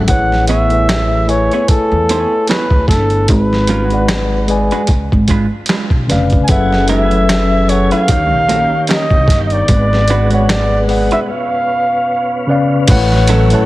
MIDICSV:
0, 0, Header, 1, 9, 480
1, 0, Start_track
1, 0, Tempo, 800000
1, 49, Time_signature, 4, 2, 24, 8
1, 8194, End_track
2, 0, Start_track
2, 0, Title_t, "Flugelhorn"
2, 0, Program_c, 0, 56
2, 49, Note_on_c, 0, 78, 100
2, 272, Note_off_c, 0, 78, 0
2, 290, Note_on_c, 0, 76, 95
2, 777, Note_on_c, 0, 73, 84
2, 786, Note_off_c, 0, 76, 0
2, 1013, Note_on_c, 0, 69, 77
2, 1022, Note_off_c, 0, 73, 0
2, 1491, Note_off_c, 0, 69, 0
2, 1496, Note_on_c, 0, 71, 82
2, 1716, Note_off_c, 0, 71, 0
2, 1733, Note_on_c, 0, 69, 82
2, 1954, Note_off_c, 0, 69, 0
2, 1978, Note_on_c, 0, 71, 80
2, 2909, Note_off_c, 0, 71, 0
2, 3860, Note_on_c, 0, 80, 75
2, 3897, Note_on_c, 0, 78, 104
2, 3906, Note_off_c, 0, 80, 0
2, 4133, Note_off_c, 0, 78, 0
2, 4137, Note_on_c, 0, 76, 89
2, 4616, Note_on_c, 0, 73, 86
2, 4625, Note_off_c, 0, 76, 0
2, 4749, Note_off_c, 0, 73, 0
2, 4753, Note_on_c, 0, 77, 111
2, 5308, Note_off_c, 0, 77, 0
2, 5338, Note_on_c, 0, 75, 94
2, 5641, Note_off_c, 0, 75, 0
2, 5677, Note_on_c, 0, 75, 66
2, 5715, Note_on_c, 0, 74, 95
2, 5724, Note_off_c, 0, 75, 0
2, 6191, Note_off_c, 0, 74, 0
2, 6197, Note_on_c, 0, 73, 78
2, 6297, Note_on_c, 0, 74, 92
2, 6306, Note_off_c, 0, 73, 0
2, 6497, Note_off_c, 0, 74, 0
2, 6677, Note_on_c, 0, 76, 93
2, 6720, Note_off_c, 0, 76, 0
2, 6784, Note_on_c, 0, 77, 82
2, 7472, Note_off_c, 0, 77, 0
2, 8194, End_track
3, 0, Start_track
3, 0, Title_t, "Tine electric piano"
3, 0, Program_c, 1, 4
3, 0, Control_c, 1, 64, 127
3, 0, Note_on_c, 1, 68, 86
3, 0, Note_on_c, 1, 76, 92
3, 41, Note_on_c, 1, 57, 79
3, 45, Note_on_c, 1, 64, 77
3, 51, Note_off_c, 1, 68, 0
3, 51, Note_on_c, 1, 68, 70
3, 56, Control_c, 1, 64, 0
3, 59, Note_on_c, 1, 71, 73
3, 62, Note_off_c, 1, 76, 0
3, 64, Note_on_c, 1, 73, 89
3, 151, Control_c, 1, 64, 127
3, 336, Note_off_c, 1, 57, 0
3, 339, Note_off_c, 1, 64, 0
3, 342, Note_off_c, 1, 68, 0
3, 345, Note_off_c, 1, 71, 0
3, 348, Note_off_c, 1, 73, 0
3, 420, Note_on_c, 1, 57, 69
3, 427, Note_on_c, 1, 64, 53
3, 433, Note_on_c, 1, 68, 55
3, 438, Note_on_c, 1, 71, 57
3, 445, Note_on_c, 1, 76, 71
3, 701, Note_off_c, 1, 57, 0
3, 705, Note_off_c, 1, 64, 0
3, 708, Note_off_c, 1, 68, 0
3, 710, Note_off_c, 1, 71, 0
3, 714, Note_off_c, 1, 76, 0
3, 759, Note_on_c, 1, 57, 65
3, 766, Note_on_c, 1, 64, 62
3, 772, Note_on_c, 1, 80, 60
3, 778, Note_on_c, 1, 71, 58
3, 784, Note_on_c, 1, 73, 74
3, 1529, Note_off_c, 1, 57, 0
3, 1533, Note_off_c, 1, 64, 0
3, 1536, Note_off_c, 1, 80, 0
3, 1539, Note_off_c, 1, 71, 0
3, 1542, Note_off_c, 1, 73, 0
3, 1977, Control_c, 1, 64, 0
3, 2098, Control_c, 1, 64, 127
3, 2341, Note_on_c, 1, 56, 66
3, 2349, Note_on_c, 1, 68, 60
3, 2354, Note_on_c, 1, 71, 59
3, 2360, Note_on_c, 1, 74, 59
3, 2365, Note_on_c, 1, 78, 68
3, 2622, Note_off_c, 1, 56, 0
3, 2626, Note_off_c, 1, 68, 0
3, 2628, Note_off_c, 1, 71, 0
3, 2632, Note_off_c, 1, 74, 0
3, 2634, Note_off_c, 1, 78, 0
3, 2683, Note_on_c, 1, 56, 81
3, 2690, Note_on_c, 1, 68, 78
3, 2696, Note_on_c, 1, 71, 68
3, 2702, Note_on_c, 1, 74, 71
3, 2706, Note_on_c, 1, 80, 81
3, 2926, Note_off_c, 1, 56, 0
3, 2929, Note_off_c, 1, 68, 0
3, 2932, Note_off_c, 1, 71, 0
3, 2935, Note_off_c, 1, 74, 0
3, 2937, Control_c, 1, 64, 0
3, 2938, Note_off_c, 1, 80, 0
3, 3051, Control_c, 1, 64, 127
3, 3643, Note_on_c, 1, 49, 80
3, 3650, Note_on_c, 1, 61, 74
3, 3656, Note_on_c, 1, 71, 74
3, 3661, Note_on_c, 1, 74, 69
3, 3669, Note_on_c, 1, 77, 89
3, 3843, Note_off_c, 1, 49, 0
3, 3847, Note_off_c, 1, 61, 0
3, 3850, Note_off_c, 1, 71, 0
3, 3853, Note_off_c, 1, 74, 0
3, 3856, Note_off_c, 1, 77, 0
3, 3886, Note_on_c, 1, 54, 89
3, 3892, Note_on_c, 1, 61, 73
3, 3896, Control_c, 1, 64, 0
3, 3896, Note_on_c, 1, 68, 81
3, 3902, Note_on_c, 1, 69, 73
3, 3904, Note_on_c, 1, 71, 75
3, 3910, Note_on_c, 1, 76, 93
3, 3991, Control_c, 1, 64, 127
3, 4179, Note_off_c, 1, 54, 0
3, 4182, Note_off_c, 1, 61, 0
3, 4184, Note_off_c, 1, 68, 0
3, 4187, Note_off_c, 1, 69, 0
3, 4188, Note_off_c, 1, 71, 0
3, 4191, Note_off_c, 1, 76, 0
3, 4268, Note_on_c, 1, 54, 67
3, 4269, Note_on_c, 1, 61, 63
3, 4275, Note_on_c, 1, 68, 60
3, 4282, Note_on_c, 1, 69, 55
3, 4287, Note_on_c, 1, 71, 58
3, 4290, Note_on_c, 1, 76, 67
3, 4545, Note_off_c, 1, 54, 0
3, 4546, Note_off_c, 1, 61, 0
3, 4549, Note_off_c, 1, 68, 0
3, 4553, Note_off_c, 1, 69, 0
3, 4555, Note_off_c, 1, 71, 0
3, 4557, Note_off_c, 1, 76, 0
3, 4604, Note_on_c, 1, 54, 64
3, 4612, Note_on_c, 1, 61, 63
3, 4615, Note_on_c, 1, 68, 64
3, 4619, Note_on_c, 1, 69, 58
3, 4626, Note_on_c, 1, 71, 61
3, 4631, Note_on_c, 1, 78, 82
3, 4844, Note_on_c, 1, 51, 73
3, 4846, Note_off_c, 1, 54, 0
3, 4848, Note_on_c, 1, 63, 68
3, 4850, Note_off_c, 1, 61, 0
3, 4852, Note_off_c, 1, 68, 0
3, 4854, Note_off_c, 1, 69, 0
3, 4855, Note_on_c, 1, 66, 52
3, 4856, Control_c, 1, 64, 0
3, 4857, Note_off_c, 1, 71, 0
3, 4860, Note_off_c, 1, 78, 0
3, 4862, Note_on_c, 1, 73, 66
3, 4866, Note_on_c, 1, 77, 79
3, 4895, Note_on_c, 1, 67, 64
3, 4897, Note_off_c, 1, 66, 0
3, 4975, Control_c, 1, 64, 127
3, 5622, Note_off_c, 1, 51, 0
3, 5624, Note_off_c, 1, 63, 0
3, 5631, Note_off_c, 1, 73, 0
3, 5633, Note_off_c, 1, 77, 0
3, 5647, Note_off_c, 1, 67, 0
3, 5817, Control_c, 1, 64, 0
3, 5909, Control_c, 1, 64, 127
3, 6180, Note_on_c, 1, 56, 73
3, 6187, Note_on_c, 1, 68, 67
3, 6191, Note_on_c, 1, 71, 59
3, 6201, Note_on_c, 1, 74, 63
3, 6206, Note_on_c, 1, 78, 78
3, 6462, Note_off_c, 1, 56, 0
3, 6465, Note_off_c, 1, 68, 0
3, 6467, Note_off_c, 1, 71, 0
3, 6472, Note_off_c, 1, 74, 0
3, 6474, Note_off_c, 1, 78, 0
3, 6521, Note_on_c, 1, 56, 64
3, 6529, Note_on_c, 1, 68, 69
3, 6532, Note_on_c, 1, 71, 56
3, 6541, Note_on_c, 1, 74, 57
3, 6544, Note_on_c, 1, 78, 74
3, 6765, Note_off_c, 1, 56, 0
3, 6769, Note_off_c, 1, 68, 0
3, 6771, Note_off_c, 1, 71, 0
3, 6775, Note_off_c, 1, 74, 0
3, 6776, Control_c, 1, 64, 0
3, 6777, Note_off_c, 1, 78, 0
3, 6865, Control_c, 1, 64, 127
3, 7481, Note_on_c, 1, 49, 84
3, 7488, Note_on_c, 1, 61, 78
3, 7495, Note_on_c, 1, 71, 81
3, 7500, Note_on_c, 1, 74, 78
3, 7506, Note_on_c, 1, 77, 99
3, 7682, Note_off_c, 1, 49, 0
3, 7686, Note_off_c, 1, 61, 0
3, 7690, Note_off_c, 1, 71, 0
3, 7692, Note_off_c, 1, 74, 0
3, 7695, Note_off_c, 1, 77, 0
3, 7724, Note_on_c, 1, 45, 108
3, 7732, Note_on_c, 1, 57, 103
3, 7736, Control_c, 1, 64, 0
3, 7736, Note_on_c, 1, 71, 110
3, 7743, Note_on_c, 1, 73, 105
3, 7748, Note_on_c, 1, 78, 127
3, 7858, Control_c, 1, 64, 127
3, 8018, Note_off_c, 1, 45, 0
3, 8022, Note_off_c, 1, 57, 0
3, 8024, Note_off_c, 1, 71, 0
3, 8028, Note_off_c, 1, 73, 0
3, 8030, Note_off_c, 1, 78, 0
3, 8102, Note_on_c, 1, 45, 77
3, 8108, Note_on_c, 1, 57, 71
3, 8115, Note_on_c, 1, 71, 68
3, 8122, Note_on_c, 1, 73, 72
3, 8127, Note_on_c, 1, 81, 78
3, 8194, Note_off_c, 1, 45, 0
3, 8194, Note_off_c, 1, 57, 0
3, 8194, Note_off_c, 1, 71, 0
3, 8194, Note_off_c, 1, 73, 0
3, 8194, Note_off_c, 1, 81, 0
3, 8194, End_track
4, 0, Start_track
4, 0, Title_t, "Hollow-body jazz guitar"
4, 0, Program_c, 2, 26
4, 294, Note_on_c, 2, 59, 69
4, 297, Note_on_c, 2, 64, 93
4, 301, Note_on_c, 2, 68, 80
4, 301, Note_on_c, 2, 73, 88
4, 515, Note_off_c, 2, 59, 0
4, 517, Note_off_c, 2, 64, 0
4, 518, Note_off_c, 2, 68, 0
4, 519, Note_off_c, 2, 73, 0
4, 918, Note_on_c, 2, 73, 50
4, 922, Note_on_c, 2, 68, 49
4, 923, Note_on_c, 2, 64, 54
4, 924, Note_on_c, 2, 59, 46
4, 968, Note_off_c, 2, 73, 0
4, 970, Note_off_c, 2, 68, 0
4, 971, Note_off_c, 2, 59, 0
4, 971, Note_off_c, 2, 64, 0
4, 1258, Note_on_c, 2, 59, 62
4, 1262, Note_on_c, 2, 64, 72
4, 1264, Note_on_c, 2, 68, 74
4, 1264, Note_on_c, 2, 73, 84
4, 1392, Note_off_c, 2, 59, 0
4, 1394, Note_off_c, 2, 64, 0
4, 1395, Note_off_c, 2, 68, 0
4, 1395, Note_off_c, 2, 73, 0
4, 1495, Note_on_c, 2, 59, 68
4, 1497, Note_on_c, 2, 64, 76
4, 1500, Note_on_c, 2, 68, 80
4, 1500, Note_on_c, 2, 73, 82
4, 1588, Note_off_c, 2, 59, 0
4, 1590, Note_off_c, 2, 64, 0
4, 1591, Note_off_c, 2, 68, 0
4, 1591, Note_off_c, 2, 73, 0
4, 2212, Note_on_c, 2, 55, 87
4, 2216, Note_on_c, 2, 61, 84
4, 2219, Note_on_c, 2, 65, 102
4, 2220, Note_on_c, 2, 70, 94
4, 2302, Note_off_c, 2, 55, 0
4, 2302, Note_on_c, 2, 56, 87
4, 2306, Note_off_c, 2, 61, 0
4, 2306, Note_on_c, 2, 62, 84
4, 2309, Note_off_c, 2, 65, 0
4, 2309, Note_on_c, 2, 66, 102
4, 2310, Note_off_c, 2, 70, 0
4, 2310, Note_on_c, 2, 71, 94
4, 2434, Note_off_c, 2, 56, 0
4, 2436, Note_off_c, 2, 62, 0
4, 2437, Note_off_c, 2, 66, 0
4, 2438, Note_off_c, 2, 71, 0
4, 2833, Note_on_c, 2, 66, 59
4, 2833, Note_on_c, 2, 71, 61
4, 2835, Note_on_c, 2, 62, 52
4, 2837, Note_on_c, 2, 56, 49
4, 2886, Note_off_c, 2, 66, 0
4, 2886, Note_off_c, 2, 71, 0
4, 2887, Note_off_c, 2, 62, 0
4, 2888, Note_off_c, 2, 56, 0
4, 3176, Note_on_c, 2, 56, 73
4, 3180, Note_on_c, 2, 62, 79
4, 3183, Note_on_c, 2, 65, 78
4, 3184, Note_on_c, 2, 71, 78
4, 3269, Note_off_c, 2, 56, 0
4, 3271, Note_off_c, 2, 62, 0
4, 3273, Note_off_c, 2, 65, 0
4, 3273, Note_off_c, 2, 71, 0
4, 3417, Note_on_c, 2, 56, 73
4, 3420, Note_on_c, 2, 65, 77
4, 3421, Note_on_c, 2, 62, 77
4, 3422, Note_on_c, 2, 71, 85
4, 3509, Note_off_c, 2, 56, 0
4, 3511, Note_off_c, 2, 62, 0
4, 3511, Note_off_c, 2, 65, 0
4, 3512, Note_off_c, 2, 71, 0
4, 4135, Note_on_c, 2, 56, 74
4, 4135, Note_on_c, 2, 63, 81
4, 4136, Note_on_c, 2, 70, 84
4, 4137, Note_on_c, 2, 67, 85
4, 4225, Note_off_c, 2, 56, 0
4, 4225, Note_off_c, 2, 63, 0
4, 4225, Note_on_c, 2, 57, 74
4, 4225, Note_on_c, 2, 64, 81
4, 4226, Note_off_c, 2, 70, 0
4, 4226, Note_on_c, 2, 71, 84
4, 4227, Note_off_c, 2, 67, 0
4, 4227, Note_on_c, 2, 68, 85
4, 4356, Note_off_c, 2, 57, 0
4, 4356, Note_off_c, 2, 64, 0
4, 4356, Note_off_c, 2, 68, 0
4, 4356, Note_off_c, 2, 71, 0
4, 4751, Note_on_c, 2, 71, 65
4, 4754, Note_on_c, 2, 68, 61
4, 4758, Note_on_c, 2, 57, 57
4, 4758, Note_on_c, 2, 64, 62
4, 4805, Note_off_c, 2, 71, 0
4, 4806, Note_off_c, 2, 68, 0
4, 4808, Note_off_c, 2, 57, 0
4, 4808, Note_off_c, 2, 64, 0
4, 5092, Note_on_c, 2, 58, 84
4, 5093, Note_on_c, 2, 61, 71
4, 5097, Note_on_c, 2, 67, 82
4, 5100, Note_on_c, 2, 70, 87
4, 5228, Note_off_c, 2, 58, 0
4, 5229, Note_off_c, 2, 61, 0
4, 5231, Note_off_c, 2, 67, 0
4, 5233, Note_off_c, 2, 70, 0
4, 5332, Note_on_c, 2, 58, 84
4, 5334, Note_on_c, 2, 61, 81
4, 5337, Note_on_c, 2, 67, 85
4, 5341, Note_on_c, 2, 70, 90
4, 5427, Note_off_c, 2, 58, 0
4, 5428, Note_off_c, 2, 61, 0
4, 5429, Note_off_c, 2, 67, 0
4, 5431, Note_off_c, 2, 70, 0
4, 6059, Note_on_c, 2, 56, 73
4, 6061, Note_on_c, 2, 62, 97
4, 6063, Note_on_c, 2, 66, 99
4, 6064, Note_on_c, 2, 71, 97
4, 6278, Note_off_c, 2, 56, 0
4, 6279, Note_off_c, 2, 62, 0
4, 6280, Note_off_c, 2, 66, 0
4, 6280, Note_off_c, 2, 71, 0
4, 6672, Note_on_c, 2, 71, 69
4, 6673, Note_on_c, 2, 66, 68
4, 6675, Note_on_c, 2, 56, 52
4, 6676, Note_on_c, 2, 62, 55
4, 6725, Note_off_c, 2, 71, 0
4, 6726, Note_off_c, 2, 66, 0
4, 6727, Note_off_c, 2, 56, 0
4, 6727, Note_off_c, 2, 62, 0
4, 7974, Note_on_c, 2, 54, 93
4, 7977, Note_on_c, 2, 61, 90
4, 7977, Note_on_c, 2, 64, 100
4, 7981, Note_on_c, 2, 69, 114
4, 8194, Note_off_c, 2, 54, 0
4, 8194, Note_off_c, 2, 61, 0
4, 8194, Note_off_c, 2, 64, 0
4, 8194, Note_off_c, 2, 69, 0
4, 8194, End_track
5, 0, Start_track
5, 0, Title_t, "Tonewheel organ"
5, 0, Program_c, 3, 16
5, 3890, Note_on_c, 3, 52, 61
5, 3890, Note_on_c, 3, 59, 62
5, 3890, Note_on_c, 3, 80, 62
5, 3891, Note_on_c, 3, 57, 61
5, 4840, Note_off_c, 3, 52, 0
5, 4840, Note_off_c, 3, 57, 0
5, 4840, Note_off_c, 3, 59, 0
5, 4840, Note_off_c, 3, 80, 0
5, 4854, Note_on_c, 3, 51, 64
5, 4854, Note_on_c, 3, 67, 63
5, 4855, Note_on_c, 3, 58, 62
5, 4855, Note_on_c, 3, 61, 54
5, 5802, Note_off_c, 3, 51, 0
5, 5802, Note_off_c, 3, 58, 0
5, 5802, Note_off_c, 3, 61, 0
5, 5802, Note_off_c, 3, 67, 0
5, 5812, Note_on_c, 3, 56, 58
5, 5813, Note_on_c, 3, 59, 54
5, 5813, Note_on_c, 3, 66, 70
5, 5816, Note_on_c, 3, 47, 57
5, 6761, Note_off_c, 3, 56, 0
5, 6761, Note_off_c, 3, 66, 0
5, 6767, Note_on_c, 3, 61, 55
5, 6771, Note_on_c, 3, 65, 61
5, 7712, Note_off_c, 3, 59, 0
5, 7713, Note_off_c, 3, 47, 0
5, 7718, Note_off_c, 3, 61, 0
5, 7720, Note_off_c, 3, 65, 0
5, 7726, Note_on_c, 3, 61, 62
5, 7727, Note_on_c, 3, 66, 71
5, 7729, Note_on_c, 3, 52, 70
5, 7730, Note_on_c, 3, 57, 56
5, 8194, Note_off_c, 3, 52, 0
5, 8194, Note_off_c, 3, 57, 0
5, 8194, Note_off_c, 3, 61, 0
5, 8194, Note_off_c, 3, 66, 0
5, 8194, End_track
6, 0, Start_track
6, 0, Title_t, "Upright bass"
6, 0, Program_c, 4, 32
6, 54, Note_on_c, 4, 33, 100
6, 886, Note_off_c, 4, 33, 0
6, 1149, Note_on_c, 4, 40, 78
6, 1339, Note_off_c, 4, 40, 0
6, 1626, Note_on_c, 4, 38, 74
6, 1731, Note_on_c, 4, 31, 89
6, 1740, Note_off_c, 4, 38, 0
6, 1975, Note_off_c, 4, 31, 0
6, 1975, Note_on_c, 4, 32, 103
6, 2806, Note_off_c, 4, 32, 0
6, 2934, Note_on_c, 4, 37, 76
6, 3042, Note_off_c, 4, 37, 0
6, 3078, Note_on_c, 4, 32, 87
6, 3264, Note_off_c, 4, 32, 0
6, 3546, Note_on_c, 4, 35, 85
6, 3627, Note_off_c, 4, 35, 0
6, 3657, Note_on_c, 4, 29, 79
6, 3844, Note_off_c, 4, 29, 0
6, 3897, Note_on_c, 4, 30, 101
6, 4727, Note_off_c, 4, 30, 0
6, 4858, Note_on_c, 4, 39, 94
6, 4996, Note_off_c, 4, 39, 0
6, 4996, Note_on_c, 4, 34, 90
6, 5183, Note_off_c, 4, 34, 0
6, 5466, Note_on_c, 4, 36, 85
6, 5547, Note_off_c, 4, 36, 0
6, 5571, Note_on_c, 4, 31, 83
6, 5761, Note_off_c, 4, 31, 0
6, 5815, Note_on_c, 4, 32, 97
6, 6646, Note_off_c, 4, 32, 0
6, 7733, Note_on_c, 4, 33, 113
6, 8112, Note_off_c, 4, 33, 0
6, 8194, End_track
7, 0, Start_track
7, 0, Title_t, "Muted hollow-body jazz guitar strokes"
7, 1022, Note_on_c, 9, 29, 44
7, 1082, Note_off_c, 9, 29, 0
7, 2935, Note_on_c, 9, 29, 46
7, 2995, Note_off_c, 9, 29, 0
7, 8194, End_track
8, 0, Start_track
8, 0, Title_t, "Muted upright bass strokes"
8, 1014, Note_on_c, 9, 29, 46
8, 1074, Note_off_c, 9, 29, 0
8, 8194, End_track
9, 0, Start_track
9, 0, Title_t, "Drums"
9, 46, Note_on_c, 9, 42, 75
9, 49, Note_on_c, 9, 36, 95
9, 106, Note_off_c, 9, 42, 0
9, 109, Note_off_c, 9, 36, 0
9, 194, Note_on_c, 9, 38, 25
9, 254, Note_off_c, 9, 38, 0
9, 285, Note_on_c, 9, 42, 71
9, 345, Note_off_c, 9, 42, 0
9, 422, Note_on_c, 9, 42, 34
9, 482, Note_off_c, 9, 42, 0
9, 534, Note_on_c, 9, 38, 107
9, 536, Note_on_c, 9, 42, 75
9, 538, Note_on_c, 9, 26, 76
9, 594, Note_off_c, 9, 38, 0
9, 596, Note_off_c, 9, 42, 0
9, 598, Note_off_c, 9, 26, 0
9, 773, Note_on_c, 9, 42, 47
9, 833, Note_off_c, 9, 42, 0
9, 909, Note_on_c, 9, 42, 30
9, 969, Note_off_c, 9, 42, 0
9, 1010, Note_on_c, 9, 42, 84
9, 1011, Note_on_c, 9, 36, 83
9, 1070, Note_off_c, 9, 42, 0
9, 1071, Note_off_c, 9, 36, 0
9, 1256, Note_on_c, 9, 42, 76
9, 1316, Note_off_c, 9, 42, 0
9, 1485, Note_on_c, 9, 42, 60
9, 1505, Note_on_c, 9, 38, 79
9, 1509, Note_on_c, 9, 26, 61
9, 1545, Note_off_c, 9, 42, 0
9, 1565, Note_off_c, 9, 38, 0
9, 1569, Note_off_c, 9, 26, 0
9, 1623, Note_on_c, 9, 36, 82
9, 1683, Note_off_c, 9, 36, 0
9, 1728, Note_on_c, 9, 36, 100
9, 1744, Note_on_c, 9, 38, 35
9, 1744, Note_on_c, 9, 42, 66
9, 1788, Note_off_c, 9, 36, 0
9, 1804, Note_off_c, 9, 38, 0
9, 1804, Note_off_c, 9, 42, 0
9, 1860, Note_on_c, 9, 42, 31
9, 1920, Note_off_c, 9, 42, 0
9, 1969, Note_on_c, 9, 42, 87
9, 1972, Note_on_c, 9, 36, 102
9, 2029, Note_off_c, 9, 42, 0
9, 2032, Note_off_c, 9, 36, 0
9, 2116, Note_on_c, 9, 38, 29
9, 2176, Note_off_c, 9, 38, 0
9, 2205, Note_on_c, 9, 42, 69
9, 2265, Note_off_c, 9, 42, 0
9, 2343, Note_on_c, 9, 42, 32
9, 2403, Note_off_c, 9, 42, 0
9, 2451, Note_on_c, 9, 38, 107
9, 2453, Note_on_c, 9, 42, 73
9, 2455, Note_on_c, 9, 26, 81
9, 2511, Note_off_c, 9, 38, 0
9, 2513, Note_off_c, 9, 42, 0
9, 2515, Note_off_c, 9, 26, 0
9, 2689, Note_on_c, 9, 42, 48
9, 2749, Note_off_c, 9, 42, 0
9, 2826, Note_on_c, 9, 42, 27
9, 2886, Note_off_c, 9, 42, 0
9, 2923, Note_on_c, 9, 42, 87
9, 2930, Note_on_c, 9, 36, 78
9, 2983, Note_off_c, 9, 42, 0
9, 2990, Note_off_c, 9, 36, 0
9, 3073, Note_on_c, 9, 36, 71
9, 3133, Note_off_c, 9, 36, 0
9, 3166, Note_on_c, 9, 42, 70
9, 3170, Note_on_c, 9, 36, 86
9, 3226, Note_off_c, 9, 42, 0
9, 3229, Note_off_c, 9, 36, 0
9, 3395, Note_on_c, 9, 42, 68
9, 3415, Note_on_c, 9, 38, 78
9, 3419, Note_on_c, 9, 26, 69
9, 3455, Note_off_c, 9, 42, 0
9, 3475, Note_off_c, 9, 38, 0
9, 3479, Note_off_c, 9, 26, 0
9, 3541, Note_on_c, 9, 36, 74
9, 3601, Note_off_c, 9, 36, 0
9, 3657, Note_on_c, 9, 38, 38
9, 3658, Note_on_c, 9, 42, 67
9, 3717, Note_off_c, 9, 38, 0
9, 3718, Note_off_c, 9, 42, 0
9, 3779, Note_on_c, 9, 42, 31
9, 3796, Note_on_c, 9, 36, 72
9, 3839, Note_off_c, 9, 42, 0
9, 3856, Note_off_c, 9, 36, 0
9, 3887, Note_on_c, 9, 42, 87
9, 3892, Note_on_c, 9, 36, 111
9, 3947, Note_off_c, 9, 42, 0
9, 3952, Note_off_c, 9, 36, 0
9, 4035, Note_on_c, 9, 38, 30
9, 4095, Note_off_c, 9, 38, 0
9, 4126, Note_on_c, 9, 42, 69
9, 4186, Note_off_c, 9, 42, 0
9, 4267, Note_on_c, 9, 42, 33
9, 4327, Note_off_c, 9, 42, 0
9, 4375, Note_on_c, 9, 38, 105
9, 4377, Note_on_c, 9, 42, 86
9, 4379, Note_on_c, 9, 26, 84
9, 4435, Note_off_c, 9, 38, 0
9, 4437, Note_off_c, 9, 42, 0
9, 4439, Note_off_c, 9, 26, 0
9, 4615, Note_on_c, 9, 42, 53
9, 4675, Note_off_c, 9, 42, 0
9, 4747, Note_on_c, 9, 42, 30
9, 4807, Note_off_c, 9, 42, 0
9, 4849, Note_on_c, 9, 42, 103
9, 4853, Note_on_c, 9, 36, 87
9, 4909, Note_off_c, 9, 42, 0
9, 4913, Note_off_c, 9, 36, 0
9, 5096, Note_on_c, 9, 42, 86
9, 5156, Note_off_c, 9, 42, 0
9, 5324, Note_on_c, 9, 42, 63
9, 5344, Note_on_c, 9, 38, 80
9, 5348, Note_on_c, 9, 26, 67
9, 5384, Note_off_c, 9, 42, 0
9, 5404, Note_off_c, 9, 38, 0
9, 5408, Note_off_c, 9, 26, 0
9, 5463, Note_on_c, 9, 36, 86
9, 5523, Note_off_c, 9, 36, 0
9, 5566, Note_on_c, 9, 36, 105
9, 5580, Note_on_c, 9, 38, 38
9, 5581, Note_on_c, 9, 42, 68
9, 5626, Note_off_c, 9, 36, 0
9, 5640, Note_off_c, 9, 38, 0
9, 5641, Note_off_c, 9, 42, 0
9, 5701, Note_on_c, 9, 42, 34
9, 5761, Note_off_c, 9, 42, 0
9, 5809, Note_on_c, 9, 42, 85
9, 5811, Note_on_c, 9, 36, 111
9, 5869, Note_off_c, 9, 42, 0
9, 5871, Note_off_c, 9, 36, 0
9, 5958, Note_on_c, 9, 38, 30
9, 6018, Note_off_c, 9, 38, 0
9, 6046, Note_on_c, 9, 42, 66
9, 6106, Note_off_c, 9, 42, 0
9, 6183, Note_on_c, 9, 42, 31
9, 6243, Note_off_c, 9, 42, 0
9, 6295, Note_on_c, 9, 38, 99
9, 6297, Note_on_c, 9, 42, 80
9, 6299, Note_on_c, 9, 26, 77
9, 6355, Note_off_c, 9, 38, 0
9, 6357, Note_off_c, 9, 42, 0
9, 6359, Note_off_c, 9, 26, 0
9, 6534, Note_on_c, 9, 46, 34
9, 6594, Note_off_c, 9, 46, 0
9, 6666, Note_on_c, 9, 42, 27
9, 6726, Note_off_c, 9, 42, 0
9, 7725, Note_on_c, 9, 49, 104
9, 7726, Note_on_c, 9, 42, 91
9, 7729, Note_on_c, 9, 36, 114
9, 7785, Note_off_c, 9, 49, 0
9, 7786, Note_off_c, 9, 42, 0
9, 7789, Note_off_c, 9, 36, 0
9, 7873, Note_on_c, 9, 38, 29
9, 7933, Note_off_c, 9, 38, 0
9, 7965, Note_on_c, 9, 42, 78
9, 8025, Note_off_c, 9, 42, 0
9, 8101, Note_on_c, 9, 42, 38
9, 8161, Note_off_c, 9, 42, 0
9, 8194, End_track
0, 0, End_of_file